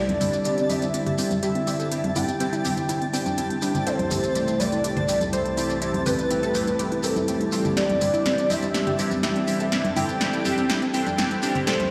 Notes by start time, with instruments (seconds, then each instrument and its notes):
Already playing: analog synth pad D3 G3 C4 E4, synth bell D5, soft synth lead D5, synth texture A5
0.09 synth pluck C4, closed hi-hat, high conga
0.21 analog polysynth G3 C4 D4 E4 G4, synth pluck C4, open hi-hat, low conga, shekere
0.33 synth pluck E4, closed hi-hat, shekere
0.44 analog polysynth G3 C4 D4 E4 G4, synth pluck C4, closed hi-hat, shekere
0.58 synth pluck C4, closed hi-hat, shekere
0.70 analog polysynth G3 C4 D4 E4 G4, synth pluck E4, soft synth lead E5, synth bell E5, open hi-hat, high conga, shekere
0.82 synth pluck C4, closed hi-hat, shekere
0.94 analog polysynth G3 C4 D4 E4 G4, synth pluck C4, closed hi-hat, shekere
1.06 synth pluck G4, closed hi-hat, low conga
1.18 analog polysynth G3 C4 D4 E4 G4, synth pluck C4, open hi-hat, shekere
1.31 synth pluck C4, closed hi-hat, high conga, shekere
1.43 analog polysynth G3 C4 D4 E4 G4, synth pluck G4, synth bell E5, soft synth lead E5, closed hi-hat, shekere
1.55 synth pluck C4, closed hi-hat
1.67 analog polysynth G3 C4 D4 E4 G4, synth pluck C4, open hi-hat, shekere
1.80 synth pluck A4, closed hi-hat, shekere
1.91 analog polysynth G3 C4 D4 E4 G4, synth pluck C4, closed hi-hat, shekere
2.04 synth pluck C4, closed hi-hat, high conga
2.16 analog polysynth G3 C4 D4 E4 G4, synth pluck E4, soft synth lead G5, synth bell G5, open hi-hat, low conga, shekere
2.28 synth pluck C4, closed hi-hat, shekere
2.40 analog polysynth G3 C4 D4 E4 G4, synth pluck C4, closed hi-hat, shekere
2.53 synth pluck E4, closed hi-hat, shekere
2.65 analog polysynth G3 C4 D4 E4 G4, synth pluck C4, open hi-hat, high conga, shekere
2.77 synth pluck C4, closed hi-hat, shekere
2.89 analog polysynth G3 C4 D4 E4 G4, synth pluck E4, closed hi-hat, shekere
3.02 synth pluck C4, closed hi-hat
3.13 analog polysynth G3 C4 D4 E4 G4, synth pluck C4, synth bell G5, soft synth lead G5, open hi-hat, shekere
3.26 synth pluck D4, closed hi-hat, high conga, shekere
3.37 analog polysynth G3 C4 D4 E4 G4, synth pluck C4, closed hi-hat, shekere
3.50 synth pluck C4, closed hi-hat
3.62 analog polysynth G3 C4 D4 E4 G4, synth pluck D4, open hi-hat, shekere
3.75 synth pluck C4, closed hi-hat, low conga, shekere
3.87 analog synth pad C2 E3 A3 G4, analog polysynth G3 A3 C4 E4 G4, synth bell C5, synth pluck C5, soft synth lead C5, closed hi-hat, shekere
3.99 synth pluck E4, closed hi-hat, high conga
4.11 analog polysynth G3 A3 C4 E4 G4, synth pluck E4, open hi-hat, low conga, shekere
4.23 synth pluck A4, closed hi-hat, shekere
4.35 analog polysynth G3 A3 C4 E4 G4, synth pluck E4, closed hi-hat, shekere
4.48 synth pluck E4, closed hi-hat, shekere
4.60 analog polysynth G3 A3 C4 E4 G4, synth pluck B4, synth bell D5, soft synth lead D5, open hi-hat, high conga, shekere
4.72 synth pluck E4, closed hi-hat, shekere
4.84 analog polysynth G3 A3 C4 E4 G4, synth pluck E4, closed hi-hat, shekere
4.97 synth pluck C5, closed hi-hat, low conga
5.08 analog polysynth G3 A3 C4 E4 G4, synth pluck E4, open hi-hat, shekere
5.21 synth pluck E4, closed hi-hat, high conga, shekere
5.33 analog polysynth G3 A3 C4 E4 G4, synth bell C5, soft synth lead C5, synth pluck C5, closed hi-hat, shekere
5.46 synth pluck E4, closed hi-hat
5.57 analog polysynth G3 A3 C4 E4 G4, synth pluck E4, open hi-hat, shekere
5.70 synth pluck D5, closed hi-hat, shekere
5.82 analog polysynth G3 A3 C4 E4 G4, synth pluck E4, closed hi-hat, shekere
5.94 synth pluck E4, closed hi-hat, high conga
6.06 analog polysynth G3 A3 C4 E4 G4, synth bell B4, synth pluck B4, soft synth lead B4, open hi-hat, low conga, shekere
6.19 synth pluck E4, closed hi-hat, shekere
6.31 analog polysynth G3 A3 C4 E4 G4, synth pluck E4, closed hi-hat, shekere
6.43 synth pluck A4, closed hi-hat, shekere
6.54 analog polysynth G3 A3 C4 E4 G4, synth pluck E4, open hi-hat, high conga, shekere
6.67 synth pluck E4, closed hi-hat, shekere
6.79 analog polysynth G3 A3 C4 E4 G4, synth pluck G4, closed hi-hat, shekere
6.92 synth pluck E4, closed hi-hat
7.03 analog polysynth G3 A3 C4 E4 G4, synth pluck E4, synth bell A4, soft synth lead A4, open hi-hat, shekere
7.16 synth pluck E4, closed hi-hat, high conga, shekere
7.28 analog polysynth G3 A3 C4 E4 G4, synth pluck E4, closed hi-hat, shekere
7.41 synth pluck E4, closed hi-hat
7.52 analog polysynth G3 A3 C4 E4 G4, synth pluck F4, open hi-hat, shekere
7.65 synth pluck E4, closed hi-hat, low conga, shekere
7.77 analog polysynth G3 C4 D4 E4 G4, analog synth pad D4, synth pluck G4, synth bell D5, soft synth lead D5, snare, closed hi-hat, shekere
7.89 synth pluck C4, closed hi-hat, high conga
8.01 analog polysynth G3 C4 D4 E4 G4, synth pluck C4, open hi-hat, low conga, shekere
8.14 synth pluck E4, closed hi-hat, shekere
8.26 analog polysynth G3 C4 D4 E4 G4, synth pluck C4, snare, closed hi-hat, shekere
8.38 synth pluck C4, closed hi-hat, shekere
8.50 analog polysynth G3 C4 D4 E4 G4, synth pluck E4, synth bell E5, soft synth lead E5, open hi-hat, high conga, shekere
8.63 synth pluck C4, closed hi-hat, shekere
8.74 analog polysynth G3 C4 D4 E4 G4, synth pluck C4, snare, closed hi-hat, shekere
8.87 synth pluck G4, closed hi-hat, low conga
8.99 analog polysynth G3 C4 D4 E4 G4, synth pluck C4, open hi-hat, shekere
9.11 synth pluck C4, closed hi-hat, high conga, shekere
9.23 analog polysynth G3 C4 D4 E4 G4, synth pluck G4, synth bell E5, soft synth lead E5, snare, closed hi-hat, shekere
9.36 synth pluck C4, closed hi-hat
9.47 analog polysynth G3 C4 D4 E4 G4, synth pluck C4, open hi-hat, shekere
9.60 synth pluck A4, closed hi-hat, shekere
9.72 analog polysynth G3 C4 D4 E4 G4, synth pluck C4, analog synth pad A4, snare, closed hi-hat, shekere
9.85 synth pluck C4, closed hi-hat, high conga
9.96 analog polysynth G3 C4 D4 E4 G4, synth pluck E4, synth bell G5, soft synth lead G5, open hi-hat, low conga, shekere
10.09 synth pluck C4, closed hi-hat, shekere
10.21 analog polysynth G3 C4 D4 E4 G4, synth pluck C4, snare, closed hi-hat, shekere
10.33 synth pluck E4, closed hi-hat, shekere
10.45 analog polysynth G3 C4 D4 E4 G4, synth pluck C4, open hi-hat, high conga, shekere
10.57 synth pluck C4, closed hi-hat, shekere
10.69 analog polysynth G3 C4 D4 E4 G4, synth pluck E4, snare, closed hi-hat, shekere
10.82 synth pluck C4, closed hi-hat
10.94 analog polysynth G3 C4 D4 E4 G4, synth pluck C4, synth bell G5, soft synth lead G5, open hi-hat, shekere
11.06 synth pluck D4, closed hi-hat, high conga, shekere
11.18 analog polysynth G3 C4 D4 E4 G4, synth pluck C4, snare, closed hi-hat, shekere
11.31 synth pluck C4, closed hi-hat
11.42 analog polysynth G3 C4 D4 E4 G4, synth pluck D4, open hi-hat, shekere
11.55 synth pluck C4, closed hi-hat, low conga, shekere
11.67 analog synth pad C2 E3 A3 C4 G4, analog polysynth G3 A3 C4 E4 G4, synth pluck A4, synth bell C5, soft synth lead C5, snare, closed hi-hat, shekere
11.80 synth pluck A3, closed hi-hat, high conga